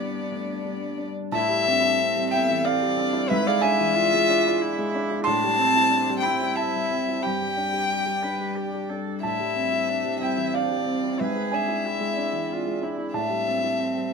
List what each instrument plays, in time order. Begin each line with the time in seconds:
Already playing: grand piano G2 D4, ambient pad G3 D4 D5, cello B3, violin D5
0.00 grand piano G3
0.32 grand piano A3
0.65 grand piano G3
0.98 grand piano D4
1.32 grand piano A2 A5, ambient pad G3 A4, cello E4, violin E5
1.49 grand piano G3
1.66 grand piano C4, cello D4
1.81 grand piano E4
2.00 cello C4
2.15 grand piano G3
2.31 cello B3, grand piano C4 G5, violin E5
2.50 grand piano E3
2.65 cello C4, violin D5, grand piano F5
2.81 grand piano G3
2.97 grand piano C4, cello D4
3.13 grand piano E4
3.29 grand piano G#2 E5, ambient pad G#3 D5, cello E4, violin B4
3.47 grand piano G#3 F5, violin D5
3.61 grand piano D4 G#5, violin E5
3.80 grand piano E3
3.97 cello F4
4.14 grand piano G#3
4.30 grand piano D4
4.46 grand piano E4
4.62 cello E4
4.78 grand piano G#3
4.95 grand piano D4
5.11 grand piano E4
5.24 grand piano A2 C6, ambient pad G3 C5, cello D4, violin A5
5.43 grand piano G3
5.58 cello C4, grand piano C4
5.76 grand piano E4
5.90 cello D4
6.09 grand piano G3
6.20 violin G5, grand piano B5
6.25 grand piano C4, cello E4
6.42 grand piano E4
6.56 violin E5, grand piano A5
6.76 grand piano G3
6.91 grand piano C4
7.09 grand piano E4
7.21 ambient pad D4 D5, cello G4, violin G5, grand piano B5
7.26 grand piano G2
7.42 grand piano G3
7.57 grand piano D4
7.73 grand piano G4
7.90 cello G4
8.05 grand piano G3
8.23 grand piano D4, cello B4
8.41 grand piano G4
8.56 cello G4
8.74 grand piano G3
8.90 grand piano D4, cello A4
9.07 grand piano G4
9.22 grand piano A2 A5, ambient pad C4 C5, cello E4, violin E5
9.39 grand piano G3
9.55 grand piano C4
9.71 grand piano E4
9.89 cello D4
10.04 grand piano G3
10.20 grand piano C4 G5, cello E4, violin E5
10.37 grand piano E3
10.54 cello D4, violin D5, grand piano F5
10.70 grand piano G3
10.86 grand piano C4, cello C4
11.04 grand piano E4
11.20 grand piano G#2 E5, ambient pad G#3 D5, cello G#4, violin B4
11.35 grand piano G#3
11.52 grand piano D4 G#5, violin E5
11.68 grand piano E4
11.87 cello E4
12.00 grand piano G#3
12.17 grand piano D4
12.32 grand piano E3
12.52 cello F4
12.66 grand piano G#3
12.82 grand piano D4, cello E4
12.98 grand piano E4
13.13 grand piano A2 A5, ambient pad G3 C5, cello D4, violin E5
13.29 grand piano G3
13.47 grand piano C4
13.63 grand piano E4
13.80 cello C4
13.97 grand piano G3